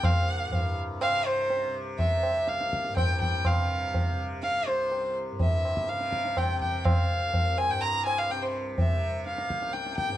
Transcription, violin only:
\new Staff \with { instrumentName = "Violin" } { \time 7/4 \key c \major \tempo 4 = 124 f''4. r8 f''8 c''4 r8 e''4 f''4 g''8 g''8 | f''4. r8 f''8 c''4 r8 e''4 f''4 g''8 g''8 | f''4. aes''16 g''16 bes''8 aes''16 f''16 g''16 c''16 r8 e''4 f''4 g''8 g''8 | }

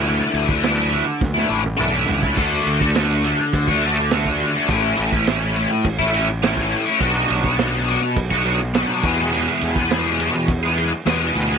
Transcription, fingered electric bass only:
\new Staff \with { instrumentName = "Fingered electric bass" } { \clef bass \time 4/4 \key d \lydian \tempo 4 = 104 d,8 d,4. d,8 a,,8 b,,8 cis,8 | d,8 d,4. d,2 | a,,8 a,,4. a,,2 | b,,8 b,,4. b,,4. e,8~ |
e,8 e,4. e,4 e,8 d,8 | }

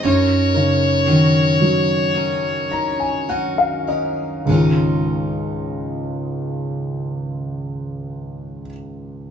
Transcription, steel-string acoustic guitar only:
\new Staff \with { instrumentName = "Steel-string acoustic guitar" } { \time 4/4 \key des \major \tempo 4 = 50 <ges des' ees' bes'>8 <des' ees' bes'>8 <ges des' ees' bes'>4 <ges des' ees' bes'>8 <des' ees' bes'>8 <ges des' ees' bes'>8 <des' ees' bes'>8 | <des aes des' ees' f'>1 | }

